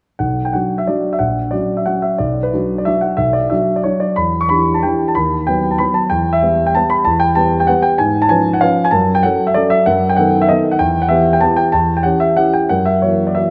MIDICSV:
0, 0, Header, 1, 2, 480
1, 0, Start_track
1, 0, Key_signature, 2, "minor"
1, 0, Tempo, 330579
1, 295, Time_signature, 3, 2, 24, 8
1, 7494, Tempo, 312500
1, 16614, Tempo, 324324
1, 20172, End_track
2, 0, Start_track
2, 0, Title_t, "Grand piano"
2, 0, Program_c, 0, 0
2, 276, Note_on_c, 0, 78, 54
2, 290, Note_on_c, 0, 35, 33
2, 539, Control_c, 0, 64, 127
2, 650, Note_off_c, 0, 78, 0
2, 653, Note_on_c, 0, 79, 52
2, 764, Note_off_c, 0, 35, 0
2, 772, Note_on_c, 0, 78, 53
2, 778, Note_off_c, 0, 79, 0
2, 787, Note_on_c, 0, 54, 25
2, 791, Note_on_c, 0, 62, 25
2, 800, Note_on_c, 0, 66, 31
2, 805, Control_c, 0, 64, 0
2, 1135, Note_on_c, 0, 76, 51
2, 1142, Note_off_c, 0, 78, 0
2, 1224, Note_off_c, 0, 54, 0
2, 1226, Note_off_c, 0, 62, 0
2, 1231, Note_off_c, 0, 66, 0
2, 1264, Note_off_c, 0, 76, 0
2, 1269, Note_on_c, 0, 74, 51
2, 1280, Note_on_c, 0, 54, 26
2, 1289, Note_on_c, 0, 62, 28
2, 1298, Note_on_c, 0, 66, 29
2, 1633, Note_off_c, 0, 74, 0
2, 1637, Note_on_c, 0, 76, 50
2, 1707, Note_off_c, 0, 54, 0
2, 1711, Note_off_c, 0, 62, 0
2, 1716, Note_off_c, 0, 66, 0
2, 1724, Note_on_c, 0, 78, 55
2, 1741, Note_on_c, 0, 34, 33
2, 1750, Note_off_c, 0, 76, 0
2, 1984, Control_c, 0, 64, 127
2, 2189, Note_on_c, 0, 74, 54
2, 2194, Note_off_c, 0, 34, 0
2, 2199, Note_off_c, 0, 78, 0
2, 2208, Note_on_c, 0, 54, 27
2, 2215, Note_on_c, 0, 61, 26
2, 2224, Note_on_c, 0, 66, 28
2, 2228, Control_c, 0, 64, 0
2, 2564, Note_off_c, 0, 74, 0
2, 2569, Note_on_c, 0, 76, 44
2, 2648, Note_off_c, 0, 54, 0
2, 2652, Note_off_c, 0, 61, 0
2, 2656, Note_off_c, 0, 66, 0
2, 2695, Note_on_c, 0, 78, 55
2, 2696, Note_off_c, 0, 76, 0
2, 2707, Note_on_c, 0, 54, 27
2, 2712, Note_on_c, 0, 61, 27
2, 2717, Note_on_c, 0, 66, 30
2, 2937, Note_on_c, 0, 76, 52
2, 2942, Note_off_c, 0, 78, 0
2, 3138, Note_off_c, 0, 54, 0
2, 3141, Note_off_c, 0, 61, 0
2, 3144, Note_off_c, 0, 66, 0
2, 3171, Note_on_c, 0, 74, 53
2, 3179, Note_off_c, 0, 76, 0
2, 3193, Note_on_c, 0, 35, 36
2, 3463, Control_c, 0, 64, 127
2, 3529, Note_on_c, 0, 71, 52
2, 3542, Note_off_c, 0, 74, 0
2, 3664, Note_off_c, 0, 35, 0
2, 3673, Note_on_c, 0, 54, 27
2, 3684, Note_on_c, 0, 62, 28
2, 3689, Note_on_c, 0, 66, 30
2, 4032, Note_off_c, 0, 71, 0
2, 4041, Note_on_c, 0, 74, 47
2, 4112, Note_off_c, 0, 54, 0
2, 4118, Note_off_c, 0, 62, 0
2, 4121, Note_off_c, 0, 66, 0
2, 4142, Note_on_c, 0, 76, 58
2, 4160, Note_off_c, 0, 74, 0
2, 4165, Note_on_c, 0, 54, 29
2, 4170, Note_on_c, 0, 62, 29
2, 4175, Note_on_c, 0, 66, 32
2, 4179, Control_c, 0, 64, 0
2, 4373, Note_on_c, 0, 78, 54
2, 4385, Note_off_c, 0, 76, 0
2, 4580, Note_off_c, 0, 54, 0
2, 4583, Note_off_c, 0, 62, 0
2, 4586, Note_off_c, 0, 66, 0
2, 4600, Note_on_c, 0, 76, 58
2, 4613, Note_off_c, 0, 78, 0
2, 4617, Note_on_c, 0, 35, 38
2, 4837, Note_on_c, 0, 74, 57
2, 4846, Note_off_c, 0, 76, 0
2, 4866, Control_c, 0, 64, 127
2, 5078, Note_on_c, 0, 76, 52
2, 5084, Note_off_c, 0, 35, 0
2, 5092, Note_off_c, 0, 74, 0
2, 5099, Note_on_c, 0, 54, 29
2, 5099, Note_on_c, 0, 62, 29
2, 5105, Note_on_c, 0, 66, 32
2, 5121, Control_c, 0, 64, 0
2, 5460, Note_off_c, 0, 76, 0
2, 5461, Note_on_c, 0, 74, 53
2, 5542, Note_off_c, 0, 54, 0
2, 5543, Note_off_c, 0, 62, 0
2, 5546, Note_off_c, 0, 66, 0
2, 5569, Note_on_c, 0, 73, 57
2, 5587, Note_on_c, 0, 54, 29
2, 5588, Note_off_c, 0, 74, 0
2, 5593, Note_on_c, 0, 66, 34
2, 5595, Note_on_c, 0, 62, 29
2, 5808, Note_on_c, 0, 74, 57
2, 5818, Note_off_c, 0, 73, 0
2, 6008, Note_off_c, 0, 54, 0
2, 6011, Note_off_c, 0, 66, 0
2, 6013, Note_off_c, 0, 62, 0
2, 6041, Note_on_c, 0, 83, 61
2, 6047, Note_off_c, 0, 74, 0
2, 6065, Note_on_c, 0, 40, 38
2, 6368, Control_c, 0, 64, 127
2, 6398, Note_on_c, 0, 85, 62
2, 6400, Note_off_c, 0, 83, 0
2, 6519, Note_off_c, 0, 40, 0
2, 6519, Note_on_c, 0, 83, 64
2, 6525, Note_off_c, 0, 85, 0
2, 6534, Note_on_c, 0, 52, 31
2, 6542, Note_on_c, 0, 62, 30
2, 6544, Note_on_c, 0, 67, 32
2, 6887, Note_on_c, 0, 81, 59
2, 6888, Note_off_c, 0, 83, 0
2, 6968, Note_off_c, 0, 52, 0
2, 6973, Note_off_c, 0, 62, 0
2, 6974, Note_off_c, 0, 67, 0
2, 7010, Note_on_c, 0, 79, 58
2, 7011, Note_off_c, 0, 81, 0
2, 7027, Control_c, 0, 64, 0
2, 7027, Note_on_c, 0, 52, 31
2, 7035, Note_on_c, 0, 62, 31
2, 7041, Note_on_c, 0, 67, 36
2, 7374, Note_off_c, 0, 79, 0
2, 7377, Note_on_c, 0, 81, 58
2, 7451, Note_off_c, 0, 52, 0
2, 7456, Note_off_c, 0, 62, 0
2, 7459, Note_off_c, 0, 67, 0
2, 7476, Note_on_c, 0, 83, 63
2, 7493, Note_off_c, 0, 81, 0
2, 7497, Note_on_c, 0, 39, 42
2, 7779, Control_c, 0, 64, 127
2, 7960, Note_off_c, 0, 39, 0
2, 7964, Note_off_c, 0, 83, 0
2, 7964, Note_on_c, 0, 79, 65
2, 7981, Note_on_c, 0, 54, 34
2, 7994, Note_on_c, 0, 59, 34
2, 7997, Note_on_c, 0, 71, 34
2, 8335, Note_off_c, 0, 79, 0
2, 8335, Note_on_c, 0, 81, 51
2, 8420, Note_off_c, 0, 54, 0
2, 8427, Note_off_c, 0, 59, 0
2, 8429, Note_off_c, 0, 71, 0
2, 8450, Note_on_c, 0, 83, 67
2, 8462, Note_off_c, 0, 81, 0
2, 8463, Note_on_c, 0, 54, 32
2, 8473, Note_on_c, 0, 59, 33
2, 8477, Note_on_c, 0, 71, 35
2, 8483, Control_c, 0, 64, 0
2, 8692, Note_on_c, 0, 81, 64
2, 8704, Note_off_c, 0, 83, 0
2, 8899, Note_off_c, 0, 54, 0
2, 8905, Note_off_c, 0, 59, 0
2, 8907, Note_off_c, 0, 71, 0
2, 8931, Note_on_c, 0, 79, 68
2, 8939, Note_off_c, 0, 81, 0
2, 8949, Note_on_c, 0, 40, 44
2, 9261, Control_c, 0, 64, 127
2, 9284, Note_on_c, 0, 76, 68
2, 9297, Note_off_c, 0, 79, 0
2, 9414, Note_off_c, 0, 40, 0
2, 9434, Note_on_c, 0, 55, 34
2, 9445, Note_on_c, 0, 59, 34
2, 9452, Note_on_c, 0, 71, 36
2, 9785, Note_off_c, 0, 76, 0
2, 9804, Note_on_c, 0, 79, 65
2, 9874, Note_off_c, 0, 55, 0
2, 9881, Note_off_c, 0, 59, 0
2, 9884, Note_off_c, 0, 71, 0
2, 9924, Note_off_c, 0, 79, 0
2, 9930, Note_on_c, 0, 81, 71
2, 9943, Control_c, 0, 64, 0
2, 9946, Note_on_c, 0, 55, 34
2, 9952, Note_on_c, 0, 59, 34
2, 9959, Note_on_c, 0, 71, 40
2, 10160, Note_on_c, 0, 83, 73
2, 10168, Note_off_c, 0, 81, 0
2, 10362, Note_off_c, 0, 55, 0
2, 10365, Note_off_c, 0, 59, 0
2, 10369, Note_off_c, 0, 71, 0
2, 10390, Note_on_c, 0, 81, 78
2, 10393, Note_off_c, 0, 83, 0
2, 10413, Note_on_c, 0, 40, 48
2, 10620, Note_on_c, 0, 79, 72
2, 10626, Note_off_c, 0, 81, 0
2, 10707, Control_c, 0, 64, 127
2, 10861, Note_on_c, 0, 81, 73
2, 10866, Note_off_c, 0, 40, 0
2, 10867, Note_off_c, 0, 79, 0
2, 10875, Note_on_c, 0, 55, 36
2, 10884, Note_on_c, 0, 59, 34
2, 10887, Note_on_c, 0, 71, 38
2, 11232, Note_off_c, 0, 81, 0
2, 11241, Note_on_c, 0, 79, 66
2, 11314, Note_off_c, 0, 55, 0
2, 11319, Note_off_c, 0, 59, 0
2, 11321, Note_off_c, 0, 71, 0
2, 11349, Note_on_c, 0, 78, 73
2, 11362, Note_off_c, 0, 79, 0
2, 11367, Note_on_c, 0, 55, 37
2, 11367, Note_on_c, 0, 59, 34
2, 11373, Note_on_c, 0, 71, 38
2, 11384, Control_c, 0, 64, 0
2, 11585, Note_on_c, 0, 79, 70
2, 11601, Note_off_c, 0, 78, 0
2, 11802, Note_off_c, 0, 55, 0
2, 11802, Note_off_c, 0, 59, 0
2, 11805, Note_off_c, 0, 71, 0
2, 11829, Note_on_c, 0, 80, 73
2, 11836, Note_off_c, 0, 79, 0
2, 11847, Note_on_c, 0, 44, 49
2, 12111, Control_c, 0, 64, 127
2, 12188, Note_off_c, 0, 80, 0
2, 12188, Note_on_c, 0, 81, 75
2, 12301, Note_off_c, 0, 44, 0
2, 12301, Note_on_c, 0, 80, 73
2, 12310, Note_off_c, 0, 81, 0
2, 12320, Note_on_c, 0, 53, 37
2, 12327, Note_on_c, 0, 61, 37
2, 12334, Note_on_c, 0, 71, 40
2, 12669, Note_off_c, 0, 80, 0
2, 12676, Note_on_c, 0, 78, 66
2, 12753, Note_off_c, 0, 53, 0
2, 12757, Note_off_c, 0, 61, 0
2, 12760, Note_off_c, 0, 71, 0
2, 12789, Note_on_c, 0, 77, 73
2, 12798, Note_off_c, 0, 78, 0
2, 12809, Note_on_c, 0, 53, 36
2, 12816, Note_on_c, 0, 61, 38
2, 12819, Control_c, 0, 64, 0
2, 12823, Note_on_c, 0, 71, 41
2, 13150, Note_off_c, 0, 77, 0
2, 13153, Note_on_c, 0, 80, 72
2, 13228, Note_off_c, 0, 53, 0
2, 13232, Note_off_c, 0, 61, 0
2, 13236, Note_off_c, 0, 71, 0
2, 13253, Note_on_c, 0, 81, 75
2, 13268, Note_off_c, 0, 80, 0
2, 13270, Note_on_c, 0, 42, 48
2, 13511, Control_c, 0, 64, 127
2, 13614, Note_off_c, 0, 81, 0
2, 13618, Note_on_c, 0, 79, 74
2, 13730, Note_off_c, 0, 42, 0
2, 13741, Note_off_c, 0, 79, 0
2, 13743, Note_on_c, 0, 78, 74
2, 13756, Note_on_c, 0, 54, 36
2, 13762, Control_c, 0, 64, 0
2, 13765, Note_on_c, 0, 61, 38
2, 13773, Note_on_c, 0, 69, 40
2, 14109, Note_on_c, 0, 76, 63
2, 14110, Note_off_c, 0, 78, 0
2, 14191, Note_off_c, 0, 54, 0
2, 14197, Note_off_c, 0, 61, 0
2, 14201, Note_off_c, 0, 69, 0
2, 14226, Note_on_c, 0, 74, 74
2, 14233, Note_off_c, 0, 76, 0
2, 14246, Note_on_c, 0, 54, 38
2, 14251, Note_on_c, 0, 61, 36
2, 14256, Note_on_c, 0, 69, 42
2, 14468, Note_on_c, 0, 76, 76
2, 14472, Note_off_c, 0, 74, 0
2, 14668, Note_off_c, 0, 54, 0
2, 14670, Note_off_c, 0, 61, 0
2, 14673, Note_off_c, 0, 69, 0
2, 14704, Note_off_c, 0, 76, 0
2, 14713, Note_on_c, 0, 78, 76
2, 14724, Note_on_c, 0, 42, 48
2, 14954, Control_c, 0, 64, 127
2, 15065, Note_off_c, 0, 78, 0
2, 15071, Note_on_c, 0, 79, 71
2, 15178, Note_off_c, 0, 42, 0
2, 15180, Note_on_c, 0, 78, 73
2, 15189, Note_off_c, 0, 79, 0
2, 15206, Note_on_c, 0, 51, 37
2, 15210, Note_on_c, 0, 59, 36
2, 15219, Note_on_c, 0, 69, 39
2, 15548, Note_off_c, 0, 78, 0
2, 15565, Note_on_c, 0, 76, 68
2, 15635, Note_off_c, 0, 51, 0
2, 15637, Note_off_c, 0, 59, 0
2, 15643, Note_off_c, 0, 69, 0
2, 15672, Note_on_c, 0, 75, 72
2, 15679, Note_off_c, 0, 76, 0
2, 15684, Note_on_c, 0, 51, 36
2, 15689, Control_c, 0, 64, 0
2, 15698, Note_on_c, 0, 59, 36
2, 15705, Note_on_c, 0, 69, 40
2, 16025, Note_on_c, 0, 78, 66
2, 16027, Note_off_c, 0, 75, 0
2, 16102, Note_off_c, 0, 51, 0
2, 16110, Note_off_c, 0, 59, 0
2, 16114, Note_off_c, 0, 69, 0
2, 16141, Note_off_c, 0, 78, 0
2, 16141, Note_on_c, 0, 79, 76
2, 16158, Note_on_c, 0, 40, 46
2, 16398, Control_c, 0, 64, 127
2, 16489, Note_on_c, 0, 78, 67
2, 16493, Note_off_c, 0, 79, 0
2, 16594, Note_on_c, 0, 76, 67
2, 16607, Note_off_c, 0, 40, 0
2, 16611, Note_off_c, 0, 78, 0
2, 16616, Note_on_c, 0, 52, 35
2, 16622, Note_on_c, 0, 59, 35
2, 16631, Note_on_c, 0, 67, 38
2, 16955, Note_off_c, 0, 76, 0
2, 16958, Note_on_c, 0, 79, 65
2, 17038, Note_off_c, 0, 52, 0
2, 17042, Note_off_c, 0, 59, 0
2, 17047, Note_off_c, 0, 67, 0
2, 17069, Note_on_c, 0, 81, 76
2, 17075, Note_on_c, 0, 52, 35
2, 17081, Note_off_c, 0, 79, 0
2, 17087, Note_on_c, 0, 59, 34
2, 17095, Note_on_c, 0, 67, 39
2, 17106, Control_c, 0, 64, 0
2, 17304, Note_on_c, 0, 79, 71
2, 17315, Note_off_c, 0, 81, 0
2, 17502, Note_off_c, 0, 52, 0
2, 17509, Note_off_c, 0, 59, 0
2, 17513, Note_off_c, 0, 67, 0
2, 17537, Note_on_c, 0, 81, 74
2, 17545, Note_off_c, 0, 79, 0
2, 17554, Note_on_c, 0, 40, 44
2, 17800, Control_c, 0, 64, 127
2, 17895, Note_off_c, 0, 81, 0
2, 17899, Note_on_c, 0, 79, 59
2, 17993, Note_on_c, 0, 78, 66
2, 18009, Note_off_c, 0, 40, 0
2, 18020, Note_off_c, 0, 79, 0
2, 18020, Note_on_c, 0, 52, 33
2, 18023, Note_on_c, 0, 61, 34
2, 18025, Note_on_c, 0, 67, 38
2, 18037, Control_c, 0, 64, 0
2, 18245, Note_on_c, 0, 76, 63
2, 18250, Note_off_c, 0, 78, 0
2, 18461, Note_off_c, 0, 52, 0
2, 18463, Note_off_c, 0, 61, 0
2, 18464, Note_off_c, 0, 67, 0
2, 18489, Note_on_c, 0, 78, 69
2, 18502, Note_off_c, 0, 76, 0
2, 18504, Note_on_c, 0, 52, 34
2, 18509, Note_on_c, 0, 61, 32
2, 18513, Note_on_c, 0, 67, 37
2, 18740, Note_on_c, 0, 79, 62
2, 18745, Note_off_c, 0, 78, 0
2, 18940, Note_off_c, 0, 52, 0
2, 18943, Note_off_c, 0, 61, 0
2, 18945, Note_off_c, 0, 67, 0
2, 18975, Note_on_c, 0, 78, 70
2, 18984, Note_off_c, 0, 79, 0
2, 18987, Note_on_c, 0, 42, 38
2, 19214, Note_on_c, 0, 76, 60
2, 19216, Note_off_c, 0, 78, 0
2, 19253, Control_c, 0, 64, 127
2, 19447, Note_off_c, 0, 42, 0
2, 19457, Note_on_c, 0, 73, 56
2, 19459, Note_off_c, 0, 76, 0
2, 19468, Note_on_c, 0, 52, 29
2, 19473, Note_on_c, 0, 58, 30
2, 19482, Note_on_c, 0, 66, 32
2, 19826, Note_on_c, 0, 74, 50
2, 19831, Note_off_c, 0, 73, 0
2, 19913, Note_off_c, 0, 52, 0
2, 19916, Note_off_c, 0, 58, 0
2, 19921, Note_off_c, 0, 66, 0
2, 19942, Note_on_c, 0, 76, 55
2, 19957, Note_off_c, 0, 74, 0
2, 19959, Note_on_c, 0, 52, 29
2, 19965, Note_on_c, 0, 58, 29
2, 19975, Note_on_c, 0, 66, 30
2, 19978, Control_c, 0, 64, 0
2, 20172, Note_off_c, 0, 52, 0
2, 20172, Note_off_c, 0, 58, 0
2, 20172, Note_off_c, 0, 66, 0
2, 20172, Note_off_c, 0, 76, 0
2, 20172, End_track
0, 0, End_of_file